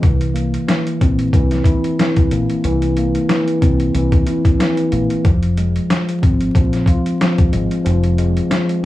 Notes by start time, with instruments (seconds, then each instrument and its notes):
0.02 fingered electric bass C2, tine electric piano E3, kick, closed hi-hat
0.21 closed hi-hat
0.34 tine electric piano A#3, closed hi-hat
0.54 closed hi-hat
0.68 tine electric piano E3, snare, closed hi-hat
0.87 closed hi-hat
1.01 fingered electric bass A#1, tine electric piano C4, kick, closed hi-hat
1.19 closed hi-hat
1.33 fingered electric bass C2, tine electric piano E3, kick, closed hi-hat
1.51 snare, closed hi-hat
1.64 tine electric piano E4, kick, closed hi-hat
1.84 closed hi-hat
1.99 tine electric piano E3, snare, closed hi-hat
2.16 kick, closed hi-hat
2.31 fingered electric bass A#1, tine electric piano A#3, closed hi-hat
2.50 closed hi-hat
2.64 fingered electric bass C2, tine electric piano E3, closed hi-hat
2.82 closed hi-hat
2.97 tine electric piano A#3, closed hi-hat
3.15 closed hi-hat
3.29 tine electric piano E3, snare, closed hi-hat
3.48 closed hi-hat
3.61 fingered electric bass C2, tine electric piano C4, kick, closed hi-hat
3.80 closed hi-hat
3.95 fingered electric bass C2, tine electric piano E3, closed hi-hat
4.12 kick, closed hi-hat
4.26 tine electric piano E4, closed hi-hat
4.45 kick, closed hi-hat
4.59 tine electric piano E3, snare, closed hi-hat
4.77 closed hi-hat
4.92 fingered electric bass A#1, tine electric piano A#3, closed hi-hat
5.10 closed hi-hat
5.25 fingered electric bass F1, tine electric piano F3, kick, closed hi-hat
5.43 closed hi-hat
5.57 tine electric piano G#3, closed hi-hat
5.76 closed hi-hat
5.90 tine electric piano F3, snare, closed hi-hat
6.09 closed hi-hat
6.22 fingered electric bass G#1, tine electric piano C4, kick, closed hi-hat
6.41 closed hi-hat
6.55 fingered electric bass A#1, tine electric piano F3, kick, closed hi-hat
6.73 snare, closed hi-hat
6.86 tine electric piano F4, kick, closed hi-hat
7.06 closed hi-hat
7.21 tine electric piano F3, snare, closed hi-hat
7.38 kick, closed hi-hat
7.53 fingered electric bass G#1, tine electric piano G#3, closed hi-hat
7.71 closed hi-hat
7.84 fingered electric bass F1, tine electric piano F3, closed hi-hat
8.04 closed hi-hat
8.18 tine electric piano G#3, closed hi-hat
8.37 closed hi-hat
8.50 tine electric piano F3, snare, closed hi-hat
8.69 closed hi-hat